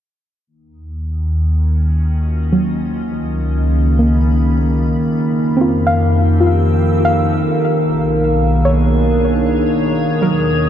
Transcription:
0.47 2.81 D#2 medium
0.47 10.69 D#3 medium
0.47 2.85 D#3 medium
0.47 10.69 A#3 medium
1.07 5.22 C#4 medium
1.50 6.16 F4 medium
1.54 2.85 F#4 medium
1.54 5.22 D#5 medium
2.53 3.01 F#3 medium
2.85 5.18 C#2 medium
2.85 5.22 C#3 medium
3.32 6.17 B5 medium
3.99 5.38 A#3 soft
5.22 7.55 F2 medium
5.22 7.59 F3 medium
5.46 7.60 C4 medium
5.51 7.60 G4 medium
5.57 8.17 C4 soft
5.61 6.39 F4 soft
5.87 7.04 F5 medium
5.91 7.59 E6 medium
6.29 7.59 A4 medium
6.41 9.01 F4 soft
7.05 9.65 F5 medium
7.58 9.91 B1 medium
7.58 9.96 B2 medium
7.94 10.69 G#4 medium
8.14 9.95 D4 medium
8.65 10.69 C#5 medium
8.65 10.39 C#5 medium
9.96 10.69 D#2 medium
9.96 10.69 D#3 medium
9.96 10.69 D#6 medium
10.08 10.69 A#3 medium
10.22 10.69 F#3 medium
10.22 10.69 F4 medium
10.22 10.69 A#4 medium

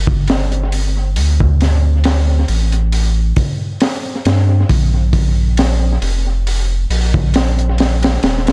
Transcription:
0.00 1.18 G1 medium
0.07 kick medium
0.28 snare loud
0.28 open hi-hat medium
0.52 closed hi-hat soft
0.72 open hi-hat medium
1.16 2.45 D2 medium
1.16 open hi-hat medium
1.40 kick loud
1.61 snare soft
1.61 open hi-hat medium
2.04 snare loud
2.04 open hi-hat medium
2.48 3.33 A1 medium
2.48 open hi-hat medium
2.72 closed hi-hat soft
2.92 open hi-hat medium
3.36 kick medium
3.36 open hi-hat medium
3.80 snare loud
3.80 open hi-hat medium
4.25 4.64 G2 medium
4.25 snare loud
4.25 open hi-hat medium
4.69 5.98 A#1 medium
4.69 kick medium
4.69 open hi-hat medium
5.13 kick medium
5.13 open hi-hat medium
5.57 snare loud
5.57 open hi-hat medium
6.02 6.86 F1 loud
6.02 open hi-hat medium
6.47 open hi-hat medium
6.90 8.18 A#1 medium
6.90 open hi-hat medium
7.14 kick medium
7.34 snare loud
7.34 open hi-hat medium
7.59 closed hi-hat soft
7.78 snare loud
7.78 open hi-hat medium
8.03 snare loud
8.03 open hi-hat medium
8.23 8.52 D#1 medium
8.23 snare loud
8.23 open hi-hat medium
8.47 snare loud
8.47 open hi-hat medium

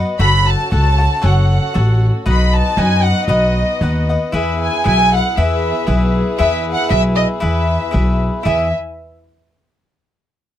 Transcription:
0.00 0.16 B3 medium
0.00 4.29 F#4 medium
0.00 0.19 B4 soft
0.00 0.19 D#5 soft
0.00 0.20 D#5 medium
0.00 0.19 F#5 medium
0.19 0.54 F#1 medium
0.19 2.26 C#4 medium
0.19 0.71 F#4 medium
0.19 0.71 A4 medium
0.19 2.26 A4 medium
0.19 0.71 C#5 medium
0.19 0.72 F#5 medium
0.19 0.46 B5 medium
0.48 0.72 A5 medium
0.71 1.06 C#2 loud
0.71 0.99 F#4 medium
0.71 0.98 A4 soft
0.71 0.97 C#5 medium
0.71 0.97 F#5 medium
0.71 1.21 A5 medium
0.98 1.21 A4 soft
0.98 1.21 C#5 soft
0.98 1.22 F#5 soft
1.22 1.57 F#1 loud
1.22 1.74 F#4 medium
1.22 1.73 A4 medium
1.22 1.74 C#5 medium
1.22 1.74 F#5 medium
1.22 2.02 F#5 medium
1.74 2.09 A1 loud
1.74 2.25 F#4 medium
1.74 2.25 A4 medium
1.74 2.26 C#5 medium
1.74 2.26 F#5 soft
2.25 2.60 B1 medium
2.25 8.41 B3 medium
2.25 2.76 D#4 medium
2.25 2.78 B4 medium
2.25 4.30 D#5 medium
2.25 2.77 D#5 medium
2.25 2.78 F#5 medium
2.31 2.54 B5 medium
2.56 2.79 A5 medium
2.77 3.11 F#2 loud
2.77 3.27 D#4 medium
2.77 3.29 B4 medium
2.77 3.28 D#5 medium
2.77 3.28 F#5 medium
2.77 3.06 G#5 loud
3.05 3.30 F#5 medium
3.28 3.62 B1 medium
3.28 3.80 D#4 medium
3.28 3.82 B4 medium
3.28 4.04 D#5 medium
3.28 3.81 D#5 medium
3.28 3.81 F#5 medium
3.81 4.15 D#2 loud
3.81 4.08 D#4 soft
3.81 4.09 B4 soft
3.81 4.09 D#5 medium
3.81 4.08 F#5 medium
4.09 4.32 B4 soft
4.09 4.33 D#5 soft
4.09 4.34 F#5 soft
4.32 4.67 E2 medium
4.32 4.84 E4 medium
4.32 8.42 E4 medium
4.32 4.84 G#4 medium
4.32 8.42 G#4 medium
4.32 4.85 B4 medium
4.32 4.59 E5 medium
4.32 4.86 E5 medium
4.63 4.86 G#5 medium
4.84 5.19 B1 loud
4.84 5.11 E4 soft
4.84 5.11 G#4 soft
4.84 5.11 B4 medium
4.84 5.10 E5 medium
4.84 5.11 G#5 loud
5.11 5.36 G#4 soft
5.11 5.36 B4 soft
5.11 5.36 E5 soft
5.15 5.37 F#5 medium
5.37 5.70 E2 medium
5.37 5.86 E4 medium
5.37 5.86 G#4 medium
5.37 5.87 B4 medium
5.37 5.88 E5 medium
5.37 6.15 E5 medium
5.87 6.21 B1 loud
5.87 6.38 E4 soft
5.87 6.38 G#4 medium
5.87 6.39 B4 medium
5.87 6.39 E5 medium
6.38 6.73 E2 medium
6.38 6.89 E4 medium
6.38 6.89 G#4 medium
6.38 6.89 B4 medium
6.38 6.63 E5 loud
6.38 6.90 E5 medium
6.74 6.89 F#5 medium
6.89 7.24 B1 loud
6.89 7.40 E4 medium
6.89 7.40 G#4 medium
6.89 7.41 B4 medium
6.89 7.02 E5 loud
6.89 7.41 E5 medium
7.16 7.28 D#5 medium
7.40 7.76 E2 medium
7.40 7.91 E4 medium
7.40 7.91 G#4 medium
7.40 7.92 B4 medium
7.40 7.92 E5 medium
7.40 8.17 E5 medium
7.91 8.28 B1 loud
7.91 8.43 E4 medium
7.91 8.45 G#4 soft
7.91 8.46 B4 medium
7.91 8.46 E5 medium
8.43 8.71 E2 loud
8.43 8.66 E4 medium
8.43 8.71 E4 soft
8.43 8.67 G#4 medium
8.43 8.71 B4 medium
8.43 8.70 E5 medium
8.43 8.67 E5 medium
8.43 8.71 G#5 medium

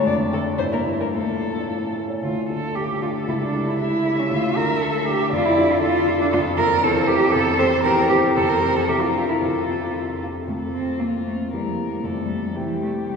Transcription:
0.06 0.57 F2 medium
0.06 0.58 D4 medium
0.06 0.14 D5 medium
0.19 0.40 A3 soft
0.32 0.54 F4 soft
0.32 0.41 A4 medium
0.46 0.59 A4 soft
0.58 1.12 G2 medium
0.58 1.12 E4 medium
0.58 0.64 C5 medium
0.72 0.94 A#3 soft
0.72 0.81 A#4 medium
0.86 1.08 E4 soft
1.00 1.14 A#4 soft
1.00 1.06 A#4 medium
1.13 1.67 A2 soft
1.13 1.95 F4 medium
1.13 1.96 A4 medium
1.28 1.50 D4 soft
1.42 1.64 A4 soft
1.55 1.69 D5 soft
1.69 2.22 A2 soft
1.82 2.05 C#4 soft
1.96 2.18 A4 soft
2.10 2.23 C#5 soft
2.23 2.49 D2 medium
2.23 2.48 F4 medium
2.49 2.98 D4 soft
2.49 2.98 F4 soft
2.49 2.77 A4 medium
2.49 2.98 A4 soft
2.75 3.02 G4 medium
2.75 3.76 A4 medium
3.01 3.25 D4 soft
3.01 3.25 F4 soft
3.01 3.11 F4 medium
3.01 3.26 A4 soft
3.28 3.53 C#2 medium
3.28 3.34 E4 medium
3.42 3.67 D4 medium
3.53 4.00 E4 soft
3.53 4.01 G4 soft
3.53 4.01 A4 soft
3.69 3.73 E4 medium
3.80 4.21 E4 medium
3.80 5.29 E5 medium
4.05 4.28 E4 soft
4.05 4.28 G4 soft
4.05 4.28 A4 soft
4.19 4.31 C#4 medium
4.31 4.55 D2 medium
4.31 4.58 F4 medium
4.56 5.02 D4 soft
4.56 5.03 F4 soft
4.56 5.02 A4 medium
4.56 4.83 A#4 medium
4.82 5.08 A4 medium
5.06 5.29 D4 medium
5.06 5.29 F4 medium
5.06 5.32 G4 medium
5.06 5.29 A4 medium
5.32 5.56 F2 medium
5.32 5.47 F4 loud
5.32 5.81 D5 medium
5.45 5.72 E4 medium
5.57 6.03 D4 medium
5.57 6.03 F4 medium
5.57 6.04 A4 medium
5.71 5.82 F4 medium
5.82 6.19 F4 loud
5.82 6.81 A4 medium
6.07 6.30 D4 medium
6.07 6.30 F4 medium
6.07 6.30 A4 medium
6.22 6.26 D4 medium
6.33 6.57 F2 medium
6.33 6.41 F4 loud
6.58 6.81 C4 medium
6.58 6.81 F4 medium
6.58 6.81 A4 medium
6.58 6.85 A#4 loud
6.83 7.07 E2 medium
6.83 7.09 A4 loud
6.83 7.32 C5 medium
7.07 7.31 C4 medium
7.07 7.33 G4 loud
7.07 7.31 A#4 medium
7.07 7.32 C5 medium
7.32 7.59 F2 medium
7.32 7.61 A4 loud
7.32 7.87 A4 medium
7.59 7.83 C4 medium
7.59 7.83 A4 medium
7.59 7.83 C5 loud
7.59 7.83 C5 medium
7.84 8.09 E2 medium
7.84 8.37 G4 medium
7.84 8.09 A#4 loud
8.09 8.33 C4 medium
8.09 8.17 G4 medium
8.09 8.33 G4 medium
8.09 8.33 C5 medium
8.36 8.61 F2 medium
8.36 8.50 A4 loud
8.36 8.87 C5 medium
8.49 8.78 A#4 loud
8.62 8.86 C4 medium
8.62 8.86 F4 medium
8.62 8.86 C5 medium
8.76 8.90 A4 medium
8.87 9.14 C2 medium
8.87 9.02 G4 medium
8.87 9.40 A#4 medium
9.01 9.30 F4 medium
9.13 9.38 D4 soft
9.13 9.38 E4 soft
9.13 9.39 A#4 medium
9.29 9.39 E4 medium
9.40 9.67 F2 medium
9.40 10.20 F4 medium
9.40 10.21 A4 medium
9.69 10.18 C4 soft
9.69 10.19 F4 soft
9.69 10.19 A4 soft
10.23 10.46 C4 soft
10.23 10.46 F4 soft
10.23 10.47 A4 soft
10.47 11.49 F2 soft
10.47 10.56 A3 medium
10.47 11.49 C4 soft
10.47 11.50 F4 soft
10.47 11.02 A4 soft
10.47 11.50 C5 soft
10.74 11.01 C4 medium
11.00 11.26 A#3 medium
11.00 11.51 F4 soft
11.27 11.35 A3 medium
11.52 12.03 E2 soft
11.52 11.65 G3 medium
11.52 12.03 A#3 soft
11.52 12.03 G4 soft
11.52 12.06 A#4 soft
11.52 12.03 C5 soft
11.66 11.74 F3 medium
11.92 12.03 G3 medium
12.03 12.53 F2 soft
12.03 12.45 G3 medium
12.03 12.54 A3 soft
12.03 12.54 F4 soft
12.03 12.57 A4 soft
12.03 12.53 C5 soft
12.44 12.57 F3 medium
12.53 13.16 C2 soft
12.53 12.81 E3 medium
12.53 13.16 G3 soft
12.53 13.16 G4 soft
12.53 13.16 G4 medium
12.53 13.16 C5 soft
12.82 12.90 A3 medium
13.07 13.16 G3 medium

